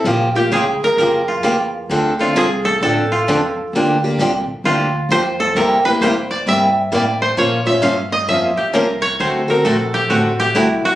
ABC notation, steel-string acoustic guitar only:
X:1
M:4/4
L:1/8
Q:"Swing" 1/4=132
K:Bblyd
V:1 name="Steel-string acoustic guitar"
[_D,F,B,FG] [B,FG] [D,F,B,FG] z [D,F,B,FG] z [D,F,B,FG] z | [D,F,CDA] [CDA] [D,F,CDA] z [D,F,CDA] z [D,F,CDA] z | [D,F,B,DG] [B,DG] [D,F,B,DG] z [D,F,B,DG] z [D,F,B,DG] z | [C,G,B,EG] [B,EG] [C,G,B,EG] z [C,G,B,EG] z [C,G,B,EG] z |
[F,B,_DFc] [DFc] [F,B,DFc] z [F,B,DFc] z [F,B,DFc] z | [D,A,C^FA] [CFA] [D,A,CFA] z [D,A,CFA] z [D,A,CFA] z |]